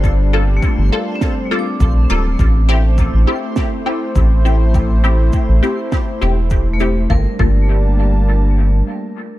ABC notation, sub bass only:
X:1
M:4/4
L:1/16
Q:1/4=102
K:Gdor
V:1 name="Sub bass" clef=bass
G,,,4 z G,,, z6 B,,,2 D,,,2 | A,,,4- A,,, A,,, z6 A,,,4- | A,,,4 z A,,, z4 E,,,6 | G,,, z G,,,8- G,,,2 z4 |]